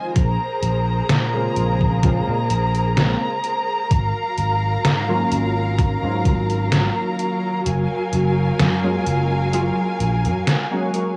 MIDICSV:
0, 0, Header, 1, 5, 480
1, 0, Start_track
1, 0, Key_signature, -5, "minor"
1, 0, Tempo, 937500
1, 80, Time_signature, 4, 2, 24, 8
1, 5717, End_track
2, 0, Start_track
2, 0, Title_t, "String section"
2, 0, Program_c, 0, 48
2, 0, Note_on_c, 0, 65, 85
2, 0, Note_on_c, 0, 72, 74
2, 0, Note_on_c, 0, 75, 75
2, 0, Note_on_c, 0, 80, 90
2, 61, Note_off_c, 0, 65, 0
2, 62, Note_off_c, 0, 75, 0
2, 62, Note_off_c, 0, 80, 0
2, 80, Note_on_c, 0, 68, 85
2, 80, Note_on_c, 0, 70, 77
2, 80, Note_on_c, 0, 82, 96
2, 1980, Note_off_c, 0, 72, 0
2, 1981, Note_off_c, 0, 68, 0
2, 1998, Note_on_c, 0, 54, 85
2, 1998, Note_on_c, 0, 77, 79
2, 3899, Note_off_c, 0, 70, 0
2, 3900, Note_off_c, 0, 77, 0
2, 3900, Note_off_c, 0, 82, 0
2, 3922, Note_on_c, 0, 77, 78
2, 3923, Note_on_c, 0, 70, 80
2, 3923, Note_on_c, 0, 80, 94
2, 5717, Note_off_c, 0, 54, 0
2, 5717, Note_off_c, 0, 70, 0
2, 5717, Note_off_c, 0, 77, 0
2, 5717, Note_off_c, 0, 80, 0
2, 5717, End_track
3, 0, Start_track
3, 0, Title_t, "Synth keys"
3, 0, Program_c, 1, 88
3, 0, Note_on_c, 1, 51, 79
3, 0, Note_on_c, 1, 53, 69
3, 0, Note_on_c, 1, 56, 71
3, 0, Note_on_c, 1, 60, 68
3, 0, Note_on_c, 1, 65, 87
3, 62, Note_off_c, 1, 51, 0
3, 64, Note_off_c, 1, 53, 0
3, 66, Note_off_c, 1, 56, 0
3, 68, Note_off_c, 1, 60, 0
3, 70, Note_off_c, 1, 65, 0
3, 683, Note_on_c, 1, 49, 86
3, 684, Note_on_c, 1, 56, 78
3, 686, Note_on_c, 1, 58, 81
3, 689, Note_on_c, 1, 60, 79
3, 690, Note_on_c, 1, 65, 89
3, 1011, Note_off_c, 1, 49, 0
3, 1012, Note_off_c, 1, 56, 0
3, 1013, Note_off_c, 1, 58, 0
3, 1014, Note_off_c, 1, 60, 0
3, 1015, Note_off_c, 1, 65, 0
3, 1037, Note_on_c, 1, 49, 101
3, 1040, Note_on_c, 1, 56, 92
3, 1042, Note_on_c, 1, 58, 90
3, 1043, Note_on_c, 1, 60, 91
3, 1045, Note_on_c, 1, 65, 107
3, 1185, Note_off_c, 1, 49, 0
3, 1186, Note_off_c, 1, 56, 0
3, 1187, Note_off_c, 1, 58, 0
3, 1188, Note_off_c, 1, 60, 0
3, 1189, Note_off_c, 1, 65, 0
3, 1518, Note_on_c, 1, 49, 80
3, 1520, Note_on_c, 1, 56, 77
3, 1522, Note_on_c, 1, 58, 78
3, 1523, Note_on_c, 1, 60, 77
3, 1526, Note_on_c, 1, 65, 94
3, 1665, Note_off_c, 1, 49, 0
3, 1667, Note_off_c, 1, 56, 0
3, 1668, Note_off_c, 1, 58, 0
3, 1668, Note_off_c, 1, 60, 0
3, 1670, Note_off_c, 1, 65, 0
3, 2602, Note_on_c, 1, 51, 95
3, 2604, Note_on_c, 1, 54, 93
3, 2606, Note_on_c, 1, 58, 90
3, 2608, Note_on_c, 1, 61, 91
3, 2610, Note_on_c, 1, 65, 111
3, 3054, Note_off_c, 1, 51, 0
3, 3055, Note_off_c, 1, 54, 0
3, 3056, Note_off_c, 1, 58, 0
3, 3057, Note_off_c, 1, 61, 0
3, 3058, Note_off_c, 1, 65, 0
3, 3078, Note_on_c, 1, 51, 80
3, 3082, Note_on_c, 1, 54, 77
3, 3086, Note_on_c, 1, 58, 76
3, 3090, Note_on_c, 1, 61, 76
3, 3094, Note_on_c, 1, 65, 84
3, 3903, Note_off_c, 1, 51, 0
3, 3905, Note_off_c, 1, 54, 0
3, 3907, Note_off_c, 1, 58, 0
3, 3909, Note_off_c, 1, 61, 0
3, 3911, Note_off_c, 1, 65, 0
3, 4523, Note_on_c, 1, 54, 85
3, 4525, Note_on_c, 1, 56, 78
3, 4526, Note_on_c, 1, 58, 78
3, 4528, Note_on_c, 1, 61, 81
3, 4530, Note_on_c, 1, 65, 97
3, 4851, Note_off_c, 1, 54, 0
3, 4852, Note_off_c, 1, 56, 0
3, 4853, Note_off_c, 1, 58, 0
3, 4854, Note_off_c, 1, 61, 0
3, 4855, Note_off_c, 1, 65, 0
3, 4876, Note_on_c, 1, 54, 102
3, 4878, Note_on_c, 1, 56, 89
3, 4881, Note_on_c, 1, 58, 90
3, 4882, Note_on_c, 1, 61, 91
3, 4884, Note_on_c, 1, 65, 116
3, 5025, Note_off_c, 1, 54, 0
3, 5026, Note_off_c, 1, 56, 0
3, 5027, Note_off_c, 1, 58, 0
3, 5028, Note_off_c, 1, 61, 0
3, 5029, Note_off_c, 1, 65, 0
3, 5483, Note_on_c, 1, 54, 92
3, 5485, Note_on_c, 1, 56, 85
3, 5487, Note_on_c, 1, 58, 83
3, 5489, Note_on_c, 1, 61, 83
3, 5490, Note_on_c, 1, 66, 99
3, 5572, Note_off_c, 1, 54, 0
3, 5573, Note_off_c, 1, 56, 0
3, 5574, Note_off_c, 1, 58, 0
3, 5574, Note_off_c, 1, 61, 0
3, 5575, Note_off_c, 1, 66, 0
3, 5597, Note_on_c, 1, 54, 78
3, 5599, Note_on_c, 1, 56, 73
3, 5600, Note_on_c, 1, 58, 73
3, 5602, Note_on_c, 1, 61, 75
3, 5605, Note_on_c, 1, 66, 86
3, 5717, Note_off_c, 1, 54, 0
3, 5717, Note_off_c, 1, 56, 0
3, 5717, Note_off_c, 1, 58, 0
3, 5717, Note_off_c, 1, 61, 0
3, 5717, Note_off_c, 1, 66, 0
3, 5717, End_track
4, 0, Start_track
4, 0, Title_t, "Fretless electric bass"
4, 0, Program_c, 2, 35
4, 81, Note_on_c, 2, 34, 96
4, 180, Note_off_c, 2, 34, 0
4, 319, Note_on_c, 2, 34, 106
4, 512, Note_off_c, 2, 34, 0
4, 560, Note_on_c, 2, 46, 109
4, 752, Note_off_c, 2, 46, 0
4, 801, Note_on_c, 2, 34, 90
4, 1124, Note_off_c, 2, 34, 0
4, 1167, Note_on_c, 2, 46, 96
4, 1281, Note_on_c, 2, 34, 89
4, 1289, Note_off_c, 2, 46, 0
4, 1604, Note_off_c, 2, 34, 0
4, 2003, Note_on_c, 2, 32, 101
4, 2101, Note_off_c, 2, 32, 0
4, 2242, Note_on_c, 2, 32, 100
4, 2434, Note_off_c, 2, 32, 0
4, 2482, Note_on_c, 2, 44, 107
4, 2673, Note_off_c, 2, 44, 0
4, 2721, Note_on_c, 2, 32, 91
4, 3044, Note_off_c, 2, 32, 0
4, 3087, Note_on_c, 2, 44, 94
4, 3201, Note_on_c, 2, 32, 88
4, 3209, Note_off_c, 2, 44, 0
4, 3524, Note_off_c, 2, 32, 0
4, 3922, Note_on_c, 2, 30, 92
4, 4021, Note_off_c, 2, 30, 0
4, 4161, Note_on_c, 2, 30, 105
4, 4353, Note_off_c, 2, 30, 0
4, 4401, Note_on_c, 2, 42, 109
4, 4593, Note_off_c, 2, 42, 0
4, 4641, Note_on_c, 2, 30, 89
4, 4964, Note_off_c, 2, 30, 0
4, 5121, Note_on_c, 2, 34, 95
4, 5246, Note_on_c, 2, 42, 103
4, 5253, Note_off_c, 2, 34, 0
4, 5337, Note_off_c, 2, 42, 0
4, 5717, End_track
5, 0, Start_track
5, 0, Title_t, "Drums"
5, 80, Note_on_c, 9, 42, 74
5, 81, Note_on_c, 9, 36, 115
5, 131, Note_off_c, 9, 42, 0
5, 132, Note_off_c, 9, 36, 0
5, 321, Note_on_c, 9, 42, 64
5, 372, Note_off_c, 9, 42, 0
5, 560, Note_on_c, 9, 38, 120
5, 560, Note_on_c, 9, 42, 80
5, 611, Note_off_c, 9, 38, 0
5, 611, Note_off_c, 9, 42, 0
5, 801, Note_on_c, 9, 42, 64
5, 852, Note_off_c, 9, 42, 0
5, 927, Note_on_c, 9, 36, 58
5, 978, Note_off_c, 9, 36, 0
5, 1041, Note_on_c, 9, 42, 71
5, 1042, Note_on_c, 9, 36, 118
5, 1092, Note_off_c, 9, 42, 0
5, 1093, Note_off_c, 9, 36, 0
5, 1281, Note_on_c, 9, 42, 67
5, 1332, Note_off_c, 9, 42, 0
5, 1407, Note_on_c, 9, 42, 38
5, 1458, Note_off_c, 9, 42, 0
5, 1521, Note_on_c, 9, 38, 120
5, 1521, Note_on_c, 9, 42, 78
5, 1572, Note_off_c, 9, 38, 0
5, 1572, Note_off_c, 9, 42, 0
5, 1761, Note_on_c, 9, 42, 63
5, 1812, Note_off_c, 9, 42, 0
5, 2002, Note_on_c, 9, 36, 113
5, 2002, Note_on_c, 9, 42, 77
5, 2053, Note_off_c, 9, 36, 0
5, 2053, Note_off_c, 9, 42, 0
5, 2241, Note_on_c, 9, 42, 65
5, 2292, Note_off_c, 9, 42, 0
5, 2482, Note_on_c, 9, 38, 119
5, 2482, Note_on_c, 9, 42, 84
5, 2533, Note_off_c, 9, 38, 0
5, 2533, Note_off_c, 9, 42, 0
5, 2722, Note_on_c, 9, 42, 65
5, 2773, Note_off_c, 9, 42, 0
5, 2962, Note_on_c, 9, 36, 114
5, 2962, Note_on_c, 9, 42, 76
5, 3013, Note_off_c, 9, 36, 0
5, 3013, Note_off_c, 9, 42, 0
5, 3202, Note_on_c, 9, 36, 102
5, 3202, Note_on_c, 9, 42, 64
5, 3253, Note_off_c, 9, 36, 0
5, 3253, Note_off_c, 9, 42, 0
5, 3327, Note_on_c, 9, 42, 37
5, 3378, Note_off_c, 9, 42, 0
5, 3440, Note_on_c, 9, 38, 118
5, 3440, Note_on_c, 9, 42, 76
5, 3491, Note_off_c, 9, 38, 0
5, 3491, Note_off_c, 9, 42, 0
5, 3681, Note_on_c, 9, 42, 64
5, 3732, Note_off_c, 9, 42, 0
5, 3922, Note_on_c, 9, 42, 78
5, 3973, Note_off_c, 9, 42, 0
5, 4161, Note_on_c, 9, 42, 72
5, 4212, Note_off_c, 9, 42, 0
5, 4401, Note_on_c, 9, 38, 123
5, 4401, Note_on_c, 9, 42, 84
5, 4452, Note_off_c, 9, 38, 0
5, 4452, Note_off_c, 9, 42, 0
5, 4642, Note_on_c, 9, 42, 67
5, 4693, Note_off_c, 9, 42, 0
5, 4881, Note_on_c, 9, 42, 78
5, 4933, Note_off_c, 9, 42, 0
5, 5121, Note_on_c, 9, 42, 70
5, 5173, Note_off_c, 9, 42, 0
5, 5247, Note_on_c, 9, 42, 41
5, 5299, Note_off_c, 9, 42, 0
5, 5362, Note_on_c, 9, 38, 114
5, 5362, Note_on_c, 9, 42, 86
5, 5413, Note_off_c, 9, 38, 0
5, 5413, Note_off_c, 9, 42, 0
5, 5601, Note_on_c, 9, 42, 69
5, 5652, Note_off_c, 9, 42, 0
5, 5717, End_track
0, 0, End_of_file